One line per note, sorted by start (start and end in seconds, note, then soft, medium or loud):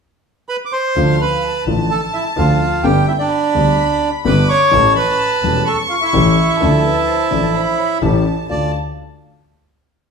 0.49 0.57 B4 medium
0.49 0.56 B5 medium
0.65 0.73 D6 medium
0.72 1.16 C5 medium
0.72 1.21 C6 medium
0.96 1.16 D2 medium
0.96 1.16 D3 medium
0.96 1.16 F3 soft
0.96 1.16 A3 medium
0.96 1.16 F4 medium
0.96 1.40 F5 medium
1.21 1.64 B4 medium
1.21 1.64 B5 medium
1.43 2.84 A5 medium
1.66 1.86 A1 soft
1.66 1.87 A1 soft
1.66 1.87 A2 soft
1.66 1.87 D3 soft
1.66 1.87 F3 soft
1.66 1.87 A3 soft
1.66 1.87 F4 soft
1.90 2.01 A4 medium
1.90 2.01 A5 medium
2.13 2.25 E4 soft
2.13 2.24 E5 medium
2.36 2.57 D2 medium
2.36 2.57 D3 medium
2.36 2.57 F3 medium
2.36 2.57 A3 soft
2.36 2.57 F4 medium
2.36 2.82 F4 medium
2.36 2.86 F5 medium
2.83 3.04 G1 medium
2.83 3.04 G2 medium
2.83 3.04 D3 medium
2.83 3.04 G3 medium
2.83 3.04 B3 medium
2.83 3.04 G4 medium
2.83 3.06 G4 medium
2.83 3.08 G5 medium
2.83 3.31 G5 medium
3.08 3.14 E4 soft
3.08 3.13 E5 medium
3.19 4.10 D4 medium
3.19 4.09 D5 medium
3.31 4.25 B5 medium
3.55 3.75 D2 medium
3.55 3.75 D2 soft
3.55 3.75 D3 soft
3.55 3.75 G3 soft
3.55 3.75 B3 soft
3.55 3.75 G4 soft
4.25 4.45 G1 medium
4.25 4.45 G2 medium
4.25 4.45 D3 medium
4.25 4.45 G3 medium
4.25 4.45 B3 medium
4.25 4.45 G4 medium
4.25 4.48 B4 medium
4.25 4.49 B5 medium
4.25 4.73 D6 medium
4.49 4.93 C#5 medium
4.49 4.92 C#6 medium
4.71 4.92 A1 medium
4.71 4.92 A2 medium
4.71 4.92 E3 medium
4.71 4.92 A3 medium
4.71 4.92 C#4 medium
4.71 4.92 G4 medium
4.71 5.67 A5 medium
4.95 5.63 B4 medium
4.95 5.68 B5 medium
5.42 5.62 E1 medium
5.42 5.63 E1 soft
5.42 5.63 E2 soft
5.42 5.63 E3 soft
5.42 5.63 A3 soft
5.42 5.63 C#4 soft
5.42 5.63 G4 soft
5.66 5.78 A4 medium
5.66 5.77 A5 medium
5.66 6.57 C#6 medium
5.89 5.96 F4 soft
5.89 5.95 F5 medium
6.01 7.99 E4 medium
6.01 7.98 E5 medium
6.13 6.33 A1 medium
6.13 6.33 A2 medium
6.13 6.33 E3 medium
6.13 6.33 A3 medium
6.13 6.33 C#4 medium
6.13 6.33 G4 medium
6.60 6.80 D2 medium
6.60 6.81 D2 medium
6.60 6.80 D3 medium
6.60 6.80 F3 medium
6.60 6.81 A3 soft
6.60 6.81 D4 soft
6.60 6.81 A4 medium
6.60 6.85 A4 medium
6.60 7.55 A5 medium
6.84 7.09 B4 medium
7.07 7.30 C5 medium
7.31 7.51 A1 soft
7.31 7.51 A2 soft
7.31 7.51 F3 soft
7.31 7.51 A3 soft
7.31 7.51 D4 soft
7.31 7.51 A4 soft
7.31 7.53 D5 medium
7.54 7.79 C5 medium
7.54 8.02 B5 medium
7.78 8.45 C#5 medium
8.02 8.22 A1 medium
8.02 8.22 A2 medium
8.02 8.22 E3 medium
8.02 8.22 A3 soft
8.02 8.22 C#4 medium
8.02 8.22 G4 medium
8.02 8.48 A5 medium
8.49 8.69 D2 soft
8.49 8.70 D2 soft
8.49 8.69 A3 soft
8.49 8.69 D4 soft
8.49 8.69 F4 soft
8.49 8.72 D5 medium
8.49 8.71 F5 medium
8.49 8.71 A5 medium